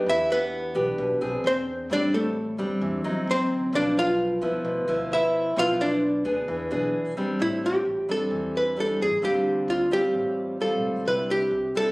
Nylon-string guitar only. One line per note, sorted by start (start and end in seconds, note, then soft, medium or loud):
0.00 0.72 B3 medium
0.00 0.72 D4 medium
0.00 0.72 G4 medium
0.06 0.96 E3 soft
0.75 1.17 B3 medium
0.75 1.17 D4 medium
0.75 1.18 G4 medium
0.99 1.42 B2 medium
1.21 1.86 C4 medium
1.21 1.86 D4 medium
1.21 1.87 G#4 medium
1.90 2.80 A2 soft
1.90 2.36 G3 soft
1.90 2.36 C4 medium
1.90 2.36 D4 medium
2.58 3.01 G3 medium
2.58 3.01 C4 medium
2.58 3.01 D4 medium
2.81 3.25 E3 medium
3.04 3.69 F#3 medium
3.04 3.70 C4 medium
3.04 3.70 D#4 medium
3.73 4.63 B2 medium
3.73 4.38 F3 medium
3.73 4.39 B3 medium
4.42 4.84 F3 medium
4.42 4.84 B3 medium
4.42 4.84 E4 medium
4.65 5.54 B2 medium
4.88 5.53 F3 medium
4.88 5.53 B3 medium
4.88 5.53 E4 medium
5.56 6.46 B2 soft
5.56 6.02 F3 medium
5.56 6.02 B3 medium
5.56 6.02 E4 medium
6.25 6.67 B3 medium
6.25 6.67 D4 medium
6.25 6.67 G#4 medium
6.48 7.16 E3 medium
6.71 7.13 B3 medium
6.71 7.13 D4 medium
6.71 7.13 G#4 medium
7.17 7.84 G3 medium
7.17 7.84 C4 medium
7.17 7.84 D4 medium
7.40 8.29 A2 medium
8.09 8.73 G3 medium
8.09 8.73 C4 medium
8.09 8.74 D4 medium
8.31 9.20 E3 medium
8.77 9.06 G3 medium
8.77 9.06 C4 soft
8.77 9.07 D4 medium
9.22 10.12 D3 soft
9.22 9.88 G3 soft
9.22 9.88 C4 soft
9.22 9.88 F4 medium
9.91 10.56 G3 medium
9.91 10.57 C4 medium
9.91 10.57 F4 medium
10.14 11.04 A2 medium
10.60 11.03 G3 soft
10.60 11.03 C4 soft
10.60 11.03 F4 medium
11.07 11.92 C3 soft
11.07 11.52 G3 soft
11.07 11.52 D4 soft
11.07 11.53 E4 soft
11.75 11.92 G3 medium
11.75 11.92 D4 medium
11.75 11.92 E4 medium